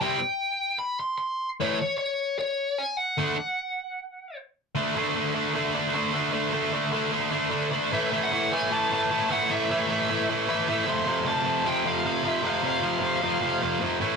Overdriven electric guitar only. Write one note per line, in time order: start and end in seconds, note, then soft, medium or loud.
0.01 0.18 C3 medium
0.01 0.19 G3 loud
0.01 0.19 C4 loud
1.60 1.77 A2 medium
1.60 1.77 E3 loud
1.60 1.77 A3 loud
3.17 3.35 D3 medium
3.17 3.35 A3 loud
3.17 3.36 D4 loud
4.75 4.95 D3 medium
4.75 4.96 A3 loud
4.75 4.97 D4 medium
4.96 5.15 D3 medium
4.96 5.16 A3 loud
4.96 5.16 D4 loud
5.16 5.34 D3 medium
5.16 5.35 A3 loud
5.16 5.35 D4 loud
5.34 5.54 D3 medium
5.34 5.54 A3 medium
5.34 5.54 D4 medium
5.55 5.73 D3 medium
5.55 5.75 A3 loud
5.55 5.75 D4 loud
5.75 5.93 D3 medium
5.75 5.94 A3 medium
5.75 5.94 D4 loud
5.94 6.13 D3 loud
5.94 6.13 A3 loud
5.94 6.13 D4 loud
6.13 6.31 D3 medium
6.13 6.32 A3 medium
6.13 6.32 D4 medium
6.33 6.51 D3 medium
6.33 6.52 A3 loud
6.33 6.53 D4 loud
6.53 6.72 D3 medium
6.53 6.72 A3 loud
6.53 6.73 D4 loud
6.73 6.91 D3 loud
6.73 6.91 A3 loud
6.73 6.92 D4 loud
6.92 7.10 D3 medium
6.92 7.11 A3 medium
6.92 7.11 D4 loud
7.11 7.29 D3 loud
7.11 7.30 A3 medium
7.11 7.30 D4 loud
7.31 7.48 D3 medium
7.31 7.49 A3 medium
7.31 7.50 D4 medium
7.49 7.70 D3 loud
7.49 7.71 A3 loud
7.49 7.71 D4 loud
7.72 7.91 D3 medium
7.72 7.91 A3 medium
7.72 7.91 D4 loud
7.92 8.11 A2 medium
7.92 8.12 E3 loud
7.92 8.12 A3 loud
8.11 8.31 A2 loud
8.11 8.32 E3 loud
8.11 8.32 A3 loud
8.31 8.51 A2 medium
8.31 8.51 E3 loud
8.31 8.52 A3 loud
8.52 8.69 A2 loud
8.52 8.70 E3 loud
8.52 8.71 A3 loud
8.70 8.89 A2 medium
8.70 8.90 E3 loud
8.70 8.91 A3 loud
8.90 9.09 A2 medium
8.90 9.10 E3 medium
8.90 9.11 A3 loud
9.10 9.28 A2 loud
9.10 9.29 E3 loud
9.10 9.31 A3 loud
9.30 9.49 A2 medium
9.30 9.49 E3 medium
9.30 9.51 A3 loud
9.50 9.69 A2 medium
9.50 9.69 E3 loud
9.50 9.71 A3 loud
9.70 9.87 A2 loud
9.70 9.88 E3 loud
9.70 9.89 A3 loud
9.88 10.08 A2 loud
9.88 10.09 E3 loud
9.88 10.10 A3 loud
10.09 10.27 A2 medium
10.09 10.28 E3 loud
10.09 10.29 A3 loud
10.29 10.48 A2 medium
10.29 10.47 E3 medium
10.29 10.49 A3 medium
10.49 10.67 A2 loud
10.49 10.67 E3 medium
10.49 10.69 A3 loud
10.68 10.86 A2 loud
10.68 10.86 E3 loud
10.68 14.01 A3 loud
10.85 11.06 F2 medium
10.85 11.06 C3 medium
10.85 11.07 F3 loud
11.07 11.26 F2 loud
11.07 11.25 C3 loud
11.07 11.26 F3 loud
11.26 11.44 F2 loud
11.26 11.44 C3 loud
11.26 11.46 F3 loud
11.44 11.64 F2 medium
11.44 11.65 C3 loud
11.44 11.65 F3 loud
11.65 11.84 F2 loud
11.65 11.85 C3 loud
11.65 11.85 F3 loud
11.85 12.03 F2 medium
11.85 12.04 C3 medium
11.85 12.04 F3 loud
12.04 12.22 F2 medium
12.04 12.23 C3 medium
12.04 12.23 F3 loud
12.23 12.42 F2 loud
12.23 12.42 C3 loud
12.23 12.42 F3 loud
12.43 12.61 F2 medium
12.43 12.62 C3 loud
12.43 12.63 F3 loud
12.63 12.80 F2 medium
12.63 12.81 C3 loud
12.63 12.81 F3 loud
12.81 12.98 F2 loud
12.81 13.00 C3 loud
12.81 13.00 F3 loud
13.00 13.20 F2 medium
13.00 13.21 C3 medium
13.00 13.22 F3 loud
13.21 13.39 F2 loud
13.21 13.40 C3 loud
13.21 13.40 F3 loud
13.41 13.61 F2 medium
13.41 13.61 C3 medium
13.41 13.62 F3 loud
13.62 13.79 F2 loud
13.62 13.79 C3 medium
13.62 13.80 F3 medium
13.80 13.99 F2 loud
13.80 13.99 C3 loud
13.80 14.00 F3 loud
14.01 14.16 A2 loud
14.01 14.16 E3 loud
14.01 14.16 A3 loud